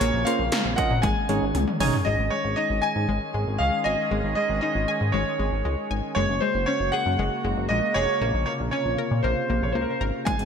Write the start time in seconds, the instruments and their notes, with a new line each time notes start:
Already playing: analog synth pad C#3 A#3
0.00 analog synth bass A#1, synth pluck A#3, analog synth pad C4 F4, grand piano C#5, closed hi-hat
0.14 analog synth bass A#1
0.25 synth pluck A#3, tine electric piano C#4 F4 A#4 C5, grand piano F5, closed hi-hat
0.39 analog synth bass A#1
0.52 synth pluck A#3, snare, closed hi-hat
0.65 analog synth bass A#1
0.76 tine electric piano C#4 F4 A#4 D#5, grand piano F#5, kick, closed hi-hat
0.91 analog synth bass A#2
1.02 analog synth bass G#1, analog synth pad D#3 G#3 C#4 G#4, synth pluck G#3, grand piano G#5, kick, closed hi-hat
1.29 analog synth bass G#1, synth pluck G#3, tine electric piano C#4 D#4 G#4 C#5, closed hi-hat
1.42 analog synth bass G#1
1.55 analog synth bass C#2, closed hi-hat, high tom
1.68 mid tom
1.80 analog synth bass G#1, tine electric piano C#4 D#4 G#4 C#5, synth pluck G#5, mid tom, open hi-hat
1.93 floor tom
2.05 analog synth bass G#1, analog synth pad D#3 G#3 C#4 G#4, synth pluck G#3, grand piano D#5
2.19 analog synth bass G#1
2.30 synth pluck G#3, grand piano C#5
2.45 analog synth bass G#1
2.56 synth pluck D#4, grand piano D#5
2.70 analog synth bass G#1
2.82 grand piano G#5, synth pluck G#5
2.96 analog synth bass G#2
3.09 analog synth bass G#1, synth pluck G#3
3.34 analog synth bass G#1, synth pluck G#3
3.47 analog synth bass G#1
3.58 analog synth bass C#2, synth pluck G#3, grand piano F5
3.84 analog synth bass G#1, grand piano D#5, synth pluck G#5
4.11 analog synth bass G#1, synth pluck G#3
4.24 analog synth bass G#1
4.35 synth pluck G#3, grand piano D#5
4.50 analog synth bass G#1
4.61 synth pluck D#4, grand piano D#5
4.75 analog synth bass G#1
4.88 synth pluck G#5
5.01 analog synth bass G#2
5.12 analog synth bass G#1, synth pluck G#3, grand piano C#5
5.39 analog synth bass G#1, synth pluck G#3
5.52 analog synth bass G#1
5.65 analog synth bass C#2, synth pluck G#3
5.91 analog synth bass G#1, synth pluck G#5
6.15 analog synth bass F#1, analog synth pad C#3 A#3 F#4, synth pluck G#3, grand piano C#5
6.29 analog synth bass F#1
6.41 synth pluck G#3, grand piano C5
6.55 analog synth bass F#1
6.66 synth pluck C#4, grand piano C#5
6.80 analog synth bass F#1
6.92 synth pluck G#4, grand piano F#5
7.06 analog synth bass F#2
7.19 analog synth bass F#1, synth pluck G#3
7.45 analog synth bass F#1, synth pluck G#3
7.57 analog synth bass F#1
7.69 analog synth bass A#1, synth pluck G#3, grand piano D#5
7.94 analog synth bass F1, synth pluck G#4, grand piano C#5
8.21 analog synth bass A#1, analog synth pad C3 F4, synth pluck A#3
8.34 analog synth bass A#1
8.46 synth pluck A#3, grand piano C#5
8.60 analog synth bass A#1
8.71 synth pluck C#4, grand piano C#5
8.86 analog synth bass A#1
8.98 synth pluck A#4
9.11 analog synth bass A#2
9.23 analog synth bass A#1, synth pluck A#3, grand piano C5
9.50 analog synth bass A#1, synth pluck A#3
9.62 analog synth bass A#1, grand piano C#5
9.72 analog synth bass C#2, synth pluck A#3, grand piano C5
9.81 grand piano A#4
9.90 grand piano C5
10.01 analog synth bass G#1, synth pluck A#4
10.25 analog synth bass G#1, synth pluck G#3, analog synth pad G#3 D#4 G#4, grand piano G#5, kick, closed hi-hat
10.39 analog synth bass G#1, closed hi-hat